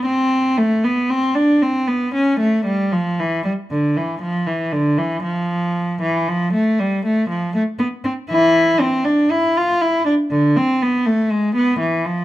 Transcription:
cello
0.06 C4
0.57 A3
0.84 B3
1.09 C4
1.34 D4
1.62 C4
1.87 B3
2.14 C#4
2.40 A3
2.65 G3
2.92 F3
3.20 E3
3.44 G3
3.70 D3
3.96 E3
4.22 F3
4.46 E3
4.72 D3
4.97 E3
5.23 F3
6.01 E3
6.28 F3
6.53 A3
6.79 G3
7.05 A3
7.29 F3
7.54 A3
7.79 B3
8.04 C4
8.30 E3 E4
8.80 C4
9.05 D4
9.31 E4
9.57 F4
9.81 E4
10.05 D4
10.31 D3
10.56 C4
10.82 B3
11.06 A3
11.31 G#3
11.55 B3
11.79 E3
12.05 F3

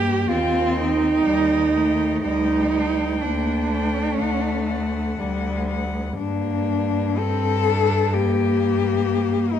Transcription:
cello
Already playing: G2 A#3 G4 G5
0.28 D#2 C4 F4 G5
0.77 D#4 G5
1.25 D#2 G3
1.74 A3 G5
2.23 D2 G3 D#4 G5
2.73 G5
3.21 D2 A#3 D4
3.70 A3 G5
4.19 D2 F#5
4.69 F#5
5.19 D2 G3
5.69 F#5
6.18 G2 A#3 D4
7.17 C4 A4
7.67 D4
8.14 A#3 G4
9.52 D#4

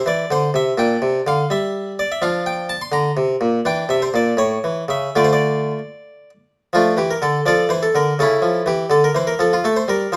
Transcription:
harpsichord
Already playing: E4
0.06 E3 D5
0.31 D3 C5
0.54 C3 E5
0.78 A#2 D4 G5
1.02 C3
1.27 D3 F5
1.50 G3 E5
1.99 D5
2.12 E5
2.22 F3 D4 F5
2.46 G5
2.69 A5
2.81 C6
2.92 D3 A#5
3.17 C3
3.41 A#2
3.65 E3 D4 G5
3.89 C3 E5
4.02 C5
4.14 A#2 D5
4.37 A2 C#5
4.64 E3
4.88 C#3 E5
5.16 D3 A3 F4 D5
5.24 C5
5.33 D5
6.73 F3 A3 D4 F4
6.97 E3 G4
7.11 A#4
7.22 D3 A4
7.46 F3 F4 A4 D5
7.69 E3 C5
7.83 A4
7.95 D3 A#4
8.19 C#3 C#4 E4 A4
8.42 F3
8.66 E3 G4
8.90 D3 A4
9.04 A#4
9.15 E3 C5
9.27 A#4
9.39 F3 A4
9.53 F4
9.64 A3 A4
9.76 C5
9.88 G3 A#4
10.12 F3 C5

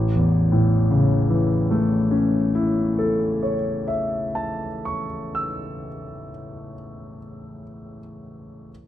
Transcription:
grand piano
Already playing: A1
0.15 E2
0.52 A2
0.91 C#3
1.30 E3
1.71 A3
2.11 C#4
2.55 E4
2.99 A4
3.43 C#5
3.88 E5
4.35 A5
4.85 C#6
5.35 E6

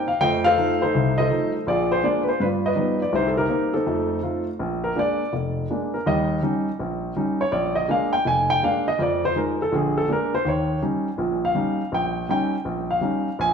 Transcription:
grand piano
Already playing: G4 A#4
0.08 F5
0.21 F2 A3 C5 D#5 G5
0.44 A4 C5 F5
0.57 F3 A3 D#4
0.82 D#4 A4 C5
0.94 C2 C3
1.18 A4 C5 D#5
1.30 F3 A3 D#4
1.67 A#1 F4 G#4 D5
1.92 C5
2.03 G#3 A#3 D4 D5
2.23 B4
2.28 C5
2.40 G2 F4 B4 D5
2.66 B4 D#5
2.76 F3 G3 B3 D#4
3.02 D5
3.13 C2 C3 D#4 G4 C5
3.28 A4
3.37 D#4 G4 A#4
3.49 A#3 C4 D#4
3.74 C4 D#4 A4
3.87 F2 A3
4.22 A3 D#4 F4
4.59 A#1
4.84 A#4
4.96 G#3 A#3 D4 D5
5.33 F1
5.70 G#3 A#3 D4
5.94 A#4
6.06 D#2 G3 D#5
6.43 G3 C#4 D#4
6.80 A#1
7.16 G3 C#4 D#4
7.41 C#5
7.52 A#1 D5
7.75 D#5
7.88 G#3 A#3 D4 F5
8.13 G5
8.25 F1 G#5
8.50 G5
8.63 G#3 A#3 D4 F5
8.88 D#5
8.99 F2 D5
9.25 C5
9.35 F3 G#3 D#4 A#4
9.62 A4
9.72 A#1 D3 G#4
9.98 A4
10.08 G#3 A#3 D4
10.12 A#4
10.35 C5
10.45 D#2 C#5
10.82 G3 C#4 D#4
11.17 A#1 A#2
11.45 F5
11.55 G3 C#4 D#4
11.92 A#1 G5
12.29 G3 C#4 D#4 G5
12.65 A#1
12.91 F5
13.01 G3 C#4 D#4
13.39 A#1 G#5

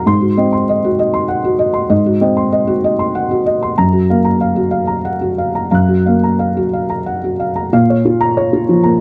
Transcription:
felt piano
0.06 G#2 C6
0.21 F#4
0.37 C4 D#5
0.53 C6
0.69 D#5
0.84 F#4
0.99 D#5
1.14 C6
1.28 F#5
1.45 F#4
1.59 D#5
1.74 C6
1.90 G#2 D#5
2.06 F#4
2.21 C4 D#5
2.37 C6
2.52 D#5
2.67 F#4
2.84 D#5
2.99 C6
3.15 F#5
3.31 F#4
3.46 D#5
3.63 C6
3.78 F#2 A#5
3.93 F#4
4.10 A#3 F5
4.25 A#5
4.41 F5
4.56 F#4
4.71 F5
4.87 A#5
5.05 F#5
5.21 F#4
5.38 F5
5.55 A#5
5.71 F#2 F5 A#5 F#6
5.88 F#4
6.06 A#3 F5
6.23 A#5
6.39 F5
6.57 F#4
6.73 F5
6.90 A#5
7.06 F#5
7.24 F#4
7.40 F5
7.56 A#5
7.73 A#2 F5
7.90 C#5
8.05 F4
8.21 A#5
8.37 C#5
8.53 F4
8.69 F3
8.83 A#3 A#5

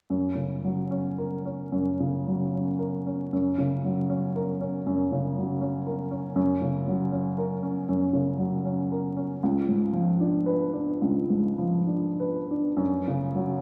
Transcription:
upright piano
0.10 F#2
0.35 C#3
0.64 F#3
0.91 C#4
1.18 A#4
1.45 C#4
1.72 F#2
2.00 C#3
2.27 F#3
2.54 C#4
2.79 A#4
3.06 C#4
3.33 F#2
3.58 C#3
3.84 F#3
4.09 C#4
4.36 A#4
4.61 C#4
4.86 F#2
5.12 C#3
5.38 F#3
5.61 C#4
5.87 A#4
6.11 C#4
6.35 F#2
6.62 C#3
6.87 F#3
7.12 C#4
7.38 A#4
7.63 C#4
7.88 F#2
8.13 C#3
8.38 F#3
8.65 C#4
8.92 A#4
9.17 C#4
9.43 C#2
9.68 G#2
9.93 F3
10.20 D4
10.46 B4
10.73 D4
11.02 C#2
11.30 G#2
11.58 F3
11.87 D4
12.20 B4
12.51 D4
12.76 F#2
13.08 C#3
13.35 F#3

